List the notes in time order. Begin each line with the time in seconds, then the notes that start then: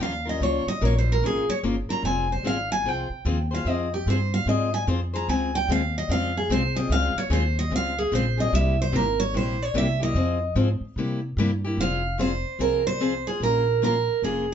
0.00 D#2 F3 A#3 C#4 F4 A#4 F5
0.25 C#4 F4 A#4 D#5
0.40 C#2 F3 A#3 C#4 F4 A#4 C#5
0.67 D#5, muted upright bass stroke
0.81 A#1 F3 A#3 C#4 F4 A#4 C#5
0.98 C5
1.12 A#4
1.22 G#1 F3 A#3 C#4 F4 G#4 A#4
1.48 C#5, muted upright bass stroke
1.63 G1 F3 A#3 C#4 F4 A#4
1.88 C#4 F4 A#4 A#5, muted upright bass stroke
2.03 F1 F3 C4 F4 G#4 C5 G#5
2.32 C5
2.43 G#1 F3 C4 F4 G#4 C5 F5
2.72 G#5
2.84 C2 F3 C4 F4 G#4 C5
2.88 G5
3.10 muted upright bass stroke
3.25 D#2 F3 C4 F4 G#4 C5
3.51 F4 G#4 C5 F5
3.65 F2 F3 C4 F4 G#4 C5
3.69 D#5
3.94 G4
4.06 G2 F3 C4 F4 G#4 C5
4.34 F5
4.46 G#2 F3 C4 F4 G#4 C5 D#5
4.74 G#5
4.87 F2 F3 C4 F4 G#4 C5
5.13 F4 G#4 C5 A#5
5.28 C#2 C#3 G#3 C4 F4 G#4 G#5
5.55 G5
5.68 D#2 C#3 G#3 C4 F4 G#4 F5
5.98 D#5
6.09 F2 C#3 G#3 C4 F4 G#4 F5
6.37 G#4
6.49 C2 C#3 G#3 C4 F4 G#4 C5
6.75 C4 F4 G#4 D#5
6.89 C#2 C#3 G#3 C4 F4 G#4 F5
7.16 C#5, muted upright bass stroke
7.30 D#2 C#3 G#3 C4 F4 G#4 C5
7.59 D#5
7.70 C#2 C#3 G#3 C4 F4 G#4
7.76 F5
7.99 G#4
8.12 A#1 C#3 G#3 C4 F4 G#4 C5
8.37 C4 F4 G#4 D#5
8.53 C2 C3 G3 A#3 E4 G4 E5
8.82 C5
8.92 G#1 C3 G3 A#3 E4 G4 A#4
9.20 C#5
9.34 A#1 C3 G3 A#3 E4 G4 C5
9.62 C#5
9.74 C2 C3 G3 A#3 E4 G4 E5
10.00 A#3 E4 G4 D#5
10.15 F2 F3 C4 F4 G#4 C5
10.55 G#2 F3 C4 F4 G#4 C5
10.81 muted upright bass stroke
10.96 C3 G3 A#3 E4 G4
11.37 G2 C3 G3 A#3 E4 G4
11.64 A#3 E4 G4
11.77 F1 F3 C4 F4 G#4 C5 F5
12.18 F3 C4 F4 G#4 C5
12.59 C2 F3 C4 F4 G#4 A#4 C5
12.87 C5
13.00 F3 C4 F4 G#4 C5
13.27 F4 G#4 C5
13.40 A#1 F3 A#3 C#4 F4 A#4
13.82 F3 A#3 C#4 F4 A#4
14.22 F1 F3 A#3 C#4 F4 G#4 A#4